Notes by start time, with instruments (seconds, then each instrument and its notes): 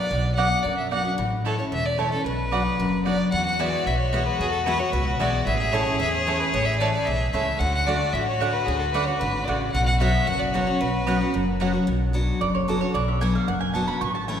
Already playing: steel-string acoustic guitar B3 D4 F#4, fiddle D5
0.11 upright bass B1, steel-string acoustic guitar B2
0.35 steel-string acoustic guitar F#3 B3 D4 F#4, mandolin B3 F#4 D5 F#5, fiddle F#5
0.63 steel-string acoustic guitar F#2, upright bass F#2, fiddle D5
0.77 fiddle E5
0.91 steel-string acoustic guitar F#3 B3 D4 F#4, mandolin B3 F#4 D5 F#5, fiddle F#5
1.05 steel-string acoustic guitar D4 F#4
1.18 upright bass A1, steel-string acoustic guitar A2
1.45 steel-string acoustic guitar E3 A3 C#4 E4, mandolin A3 E4 C#5 A5, fiddle A4
1.59 steel-string acoustic guitar C#4 E4, fiddle C#5
1.72 upright bass E1, steel-string acoustic guitar E2, fiddle E5
1.86 fiddle D5
1.98 steel-string acoustic guitar E3 A3 C#4 E4, mandolin A3 E4 C#5 A5, fiddle C#5
2.12 steel-string acoustic guitar C#4 E4, fiddle A4
2.25 upright bass B1, steel-string acoustic guitar B2, fiddle B4
2.51 steel-string acoustic guitar F#3 B3 D4 F#4, mandolin B3 F#4 D5 F#5
2.79 upright bass F#1, steel-string acoustic guitar F#2
3.05 steel-string acoustic guitar F#3 B3 D4 F#4, mandolin B3 F#4 D5 F#5, fiddle D5
3.32 steel-string acoustic guitar E2, upright bass E2, fiddle F#4 F#5
3.46 fiddle F#5
3.59 steel-string acoustic guitar E3 G#3 B3 F#4, mandolin B3 F#4 E5 G#5, fiddle D5
3.86 upright bass B1, steel-string acoustic guitar B2, fiddle E5
3.98 fiddle C#5
4.12 steel-string acoustic guitar E3 G#3 B3 F#4, mandolin B3 F#4 E5 G#5
4.26 fiddle B4
4.39 upright bass E2, steel-string acoustic guitar E2, fiddle G#4
4.51 fiddle A4
4.66 steel-string acoustic guitar E3 G#3 B3 F#4, mandolin B3 F#4 E5 G#5, fiddle B4
4.79 steel-string acoustic guitar B3 F#4, fiddle C#5
4.92 upright bass C#2, steel-string acoustic guitar B2, fiddle B4
5.19 upright bass B1, steel-string acoustic guitar E3 G#3 B3 F#4, mandolin B3 F#4 E5 G#5, fiddle D5
5.46 upright bass A1, steel-string acoustic guitar A2, fiddle G#4 E5
5.59 fiddle E5
5.72 steel-string acoustic guitar E3 A3 C#4 E4, mandolin A3 E4 C#5 A5, fiddle C#5
5.86 steel-string acoustic guitar C#4 E4
6.00 steel-string acoustic guitar E2, upright bass E2, fiddle E5
6.14 fiddle C#5
6.26 steel-string acoustic guitar E3 A3 C#4 E4, mandolin A3 E4 C#5 A5
6.40 fiddle B4
6.52 upright bass A1, steel-string acoustic guitar A2, fiddle C#5
6.65 fiddle E5
6.78 steel-string acoustic guitar E3 A3 C#4 E4, mandolin A3 E4 C#5 A5, fiddle D5
6.92 fiddle D5
7.05 upright bass B1, steel-string acoustic guitar E2, fiddle E5
7.32 upright bass C#2, steel-string acoustic guitar E3 A3 C#4 E4, mandolin A3 E4 C#5 A5, fiddle E5
7.59 upright bass D2, steel-string acoustic guitar D3, fiddle F#4 F#5
7.74 fiddle F#5
7.87 steel-string acoustic guitar D3 A3 D4 F#4, mandolin A3 F#4 D5 F#5, fiddle D5
8.13 upright bass A1, steel-string acoustic guitar A2, fiddle E5
8.28 fiddle C#5
8.40 steel-string acoustic guitar D3 A3 D4 F#4, mandolin A3 F#4 D5 F#5
8.53 fiddle B4
8.66 upright bass D2, steel-string acoustic guitar D3, fiddle G#4
8.79 fiddle A4
8.92 steel-string acoustic guitar D3 A3 D4 F#4, mandolin A3 F#4 D5 F#5, fiddle B4
9.05 steel-string acoustic guitar F#4, fiddle C#5
9.09 steel-string acoustic guitar D4
9.19 upright bass G#1, steel-string acoustic guitar D3, fiddle B4
9.45 upright bass A1, steel-string acoustic guitar C#3, mandolin A3 F#4 D5 F#5, fiddle D5
9.72 upright bass B1, steel-string acoustic guitar B2, fiddle F#4 F#5
9.86 fiddle F#5
10.00 steel-string acoustic guitar F#3 B3 C#4 F#4, mandolin B3 F#4 C#5 F#5, fiddle E5
10.27 upright bass F#1, steel-string acoustic guitar F#2, fiddle F#5
10.40 fiddle D5
10.52 steel-string acoustic guitar F#3 B3 C#4 F#4, mandolin B3 F#4 C#5 F#5, fiddle C#5
10.67 steel-string acoustic guitar C#4 F#4
10.81 upright bass B1, steel-string acoustic guitar B2, fiddle B4
11.06 steel-string acoustic guitar F#3 B3 C#4 F#4, mandolin B3 F#4 C#5 F#5
11.21 steel-string acoustic guitar C#4 F#4
11.34 upright bass F#1, steel-string acoustic guitar F#2
11.60 steel-string acoustic guitar F#3 B3 C#4 F#4, mandolin B3 F#4 C#5 F#5
11.73 steel-string acoustic guitar C#4 F#4
11.87 upright bass B1, steel-string acoustic guitar B2
12.13 steel-string acoustic guitar F#3 B3 D4 F#4
12.41 upright bass F#1, steel-string acoustic guitar F#2, mandolin D5
12.55 mandolin C#5
12.68 steel-string acoustic guitar F#3 B3 D4 F#4, mandolin A4
12.81 steel-string acoustic guitar D4 F#4, mandolin C#5
12.94 upright bass B1, steel-string acoustic guitar B2, mandolin D5
13.08 mandolin E5
13.21 steel-string acoustic guitar F#3 B3 D4 F#4, mandolin G#5
13.35 mandolin F5
13.48 upright bass F#1, steel-string acoustic guitar F#2, mandolin F#5
13.61 mandolin G#5
13.74 steel-string acoustic guitar F#3 B3 D4 F#4, mandolin A5
13.88 mandolin B5
14.01 upright bass A1, steel-string acoustic guitar A2, mandolin C#6
14.15 mandolin A5
14.28 steel-string acoustic guitar E3 A3 C#4 E4, mandolin G#5